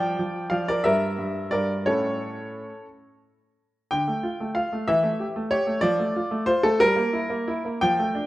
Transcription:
Already playing: F3 D5 G5
0.19 F3
0.50 F3 D5 F5
0.68 A#4 D5
0.84 G2 A#4 E5
1.18 G2
1.51 G2 A#4 D5
1.86 A2 A3 C#4 A4 C#5
3.91 D3 G5
4.08 A3
4.23 F4
4.40 A3
4.55 F4 F5
4.72 A3
4.87 E3 E5
5.03 A3
5.19 G4
5.36 A3
5.50 G4 C#5
5.67 A3
5.81 F3 D5
5.99 A3
6.16 F4
6.31 A3
6.46 F4 C5
6.63 A3 A4
6.80 G3 A#4
6.96 A#3
7.13 E4
7.30 A#3
7.48 E4
7.65 A#3
7.81 F3 G5
7.99 A3
8.15 D4

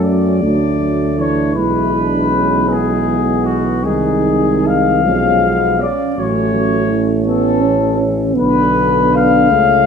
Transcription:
Already playing: F#2 F#3 A3 C#4
0.02 D5
0.43 D2 F#3 A3 D4
0.80 F#3
1.18 E3 C#5
1.55 B1 G#3 E4 B4
1.93 D4
2.31 C#4
2.68 B3 G#4
3.43 F#4
3.82 C2 D#3 G#3 D#4 G#4
4.65 F5
5.04 B1 F3 G#3 C#4
5.42 B3
5.78 C#4 D5
6.16 A1 F#3 A3 C#4 C#5
6.52 F#3
6.91 E3
7.26 B3 A4
7.62 C#4
7.97 C#4
8.35 B1 D3 B3 D4 B4
9.13 F5
9.51 C#2 C#3 A3 C#4

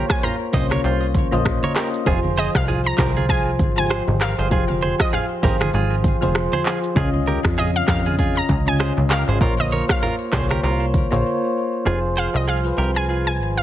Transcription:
Already playing: A#3 F4 C5 C#5 A#5
0.10 G#5, finger snap, kick, cross-stick, shaker
0.23 F4 C5 A#5, low conga, shaker
0.52 C2 A#3 C#4 F4 C5 D#5, kick, open hi-hat, low conga, shaker
0.71 A#4 C#5, finger snap, cross-stick, high conga, shaker
0.84 C2 F4 C5, shaker
1.15 kick, high conga, shaker
1.31 A#1 A#3 F4 C5 D#5, high conga, shaker
1.45 finger snap, kick, cross-stick, low conga, shaker
1.63 A#4 C#5, high conga
1.76 G4 A#4, finger snap, cross-stick, clap, open hi-hat, shaker
1.94 shaker
2.05 F1 F3 F4 G#4 C5, kick, low conga, shaker
2.24 high conga
2.37 G#4 C5 D#5, high conga, shaker
2.55 C2 F5, finger snap, kick, cross-stick, shaker
2.68 F4 G#4, low conga, shaker
2.86 A#5
2.97 C2 F3 F4 G4 G#4 A#4 C5, finger snap, kick, cross-stick, clap, open hi-hat, low conga, shaker
3.16 F4 G#4, high conga, shaker
3.29 F4 G#4 G#5, kick, shaker
3.59 G#1, kick, high conga, shaker
3.76 F3 F4 G4 C5 G#5, high conga, shaker
3.84 G#4
3.90 G#4 C5, finger snap, cross-stick, shaker
4.08 G#1, high conga
4.21 G4 A#4 F5, finger snap, cross-stick, clap, shaker
4.38 G1 G#4 C5, shaker
4.50 F1 F3 F4 G4 G#4 C5, kick, low conga, shaker
4.58 G#4
4.69 high conga
4.82 G#4 C5, high conga, shaker
5.00 D#5, finger snap, kick, cross-stick, shaker
5.13 F4 G#4 F5, low conga, shaker
5.42 G#1 F3 F4 G4 G#4 A#4 C5, kick, open hi-hat, low conga, shaker
5.61 F4 G#4, finger snap, cross-stick, high conga, shaker
5.73 G#1 F4 G#4, shaker
6.04 kick, high conga, shaker
6.21 F1 F3 F4 G#4 C5, high conga, shaker
6.35 finger snap, cross-stick, shaker
6.53 G#4 C5, high conga
6.65 F4 G#4, clap, shaker
6.83 shaker
6.95 C#2 C#3 C#4 F4 G#4 D#5, kick, low conga, shaker
7.14 high conga
7.27 G4 A#4, high conga, shaker
7.45 F2, finger snap, kick, cross-stick, shaker
7.58 F4 G#4 D#5, low conga, shaker
7.76 F5
7.87 F2 C#3 C#4 F4 G4 A#4 D#5 F5, finger snap, kick, cross-stick, clap, open hi-hat, low conga, shaker
8.05 F4 G#4, high conga, shaker
8.18 F4 G#4, kick, shaker
8.37 A#5
8.49 C#2, kick, high conga, shaker
8.66 C#3 C#4 F4 D#5 G#5, high conga, shaker
8.80 G#4 C5, finger snap, cross-stick, shaker
8.97 C#2, high conga
9.10 G4 A#4 F5, finger snap, cross-stick, clap, shaker
9.28 G#1 G#4 C5, shaker
9.40 A#1 A#3 F4 A#4 C5 C#5, kick, low conga, shaker
9.59 D#5, high conga
9.71 A#4 C#5, high conga, shaker
9.89 F5, finger snap, kick, cross-stick, shaker
10.02 F4 A#4, low conga, shaker
10.32 C2 A#3 F4 G#4 C5 C#5, finger snap, kick, cross-stick, clap, open hi-hat, low conga, shaker
10.51 G4 A#4, finger snap, cross-stick, high conga, shaker
10.63 C2 F4 A#4, shaker
10.94 kick, high conga, shaker
11.11 A#1 A#3 F4 C5 C#5, high conga, shaker
11.85 F1 F3 F4 G#4 C5
12.17 G#4 C5 F5
12.33 C2 F3 F4 G#4 C5 D#5
12.48 F4 G#4 F5
12.64 F3 F4 G#4 B4
12.73 C5
12.78 C2 G4 A#4
12.96 F4 G#4 G#5
13.09 F4 G#4
13.27 G#5
13.39 G#1
13.57 F5

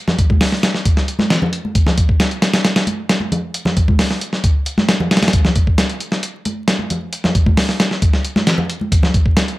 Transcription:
0.08 snare, low conga
0.19 kick, closed hi-hat
0.30 kick, high conga
0.41 snare, open hi-hat
0.52 snare
0.63 snare, closed hi-hat
0.74 snare
0.85 kick, closed hi-hat
0.97 snare
1.08 closed hi-hat
1.19 snare, high conga
1.30 snare, closed hi-hat
1.42 low conga
1.53 closed hi-hat
1.65 high conga
1.75 kick, closed hi-hat
1.86 snare, low conga
1.98 kick, closed hi-hat
2.09 kick
2.20 snare, closed hi-hat
2.31 closed hi-hat
2.42 snare, closed hi-hat
2.54 snare, closed hi-hat
2.65 snare, closed hi-hat
2.76 snare, closed hi-hat
2.87 closed hi-hat, high conga
3.09 snare, closed hi-hat
3.20 high conga
3.32 closed hi-hat, low conga
3.54 closed hi-hat
3.65 snare, low conga
3.77 kick, closed hi-hat
3.88 kick, high conga
3.99 snare, open hi-hat
4.11 snare
4.21 closed hi-hat
4.33 snare
4.44 kick, closed hi-hat
4.66 closed hi-hat
4.78 snare, high conga
4.89 snare, closed hi-hat
5.00 low conga
5.11 snare, closed hi-hat
5.17 snare, closed hi-hat
5.22 snare, closed hi-hat, high conga
5.28 snare, closed hi-hat
5.33 kick, closed hi-hat
5.45 snare, low conga
5.55 kick, closed hi-hat
5.67 kick
5.78 snare, closed hi-hat
5.90 closed hi-hat
6.00 closed hi-hat
6.12 snare
6.23 closed hi-hat
6.45 closed hi-hat, high conga
6.68 snare, closed hi-hat
6.79 high conga
6.90 closed hi-hat, low conga
7.13 closed hi-hat
7.24 snare, low conga
7.35 kick, closed hi-hat
7.46 kick, high conga
7.57 snare, open hi-hat
7.69 snare
7.80 snare, closed hi-hat
7.91 snare
8.02 kick, closed hi-hat
8.13 snare
8.25 closed hi-hat
8.36 snare, high conga
8.47 snare, closed hi-hat
8.58 low conga
8.70 closed hi-hat
8.81 high conga
8.92 kick, closed hi-hat
9.03 snare, low conga
9.14 kick, closed hi-hat
9.26 kick
9.37 snare, closed hi-hat
9.48 closed hi-hat

